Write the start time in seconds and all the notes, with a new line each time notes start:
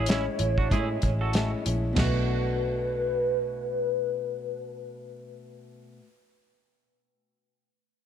Already playing: A1 C#5
0.06 A2 G#3 C#4 E4, snare, closed hi-hat
0.38 A1 G#3 C#4 E4, closed hi-hat
0.58 D4 F#4, kick
0.70 A2 G#3 C#4 E4 G#4, kick, closed hi-hat
1.01 A1 G#3 C#4 E4, kick, closed hi-hat
1.21 F#4 A4
1.33 A2 G#3 C#4 E4, snare, closed hi-hat
1.65 A#1 G#3 C#4 E4, closed hi-hat
1.93 B2, floor tom, crash
1.98 B1 A3 F#4 B4, snare
2.04 D4
2.08 F#4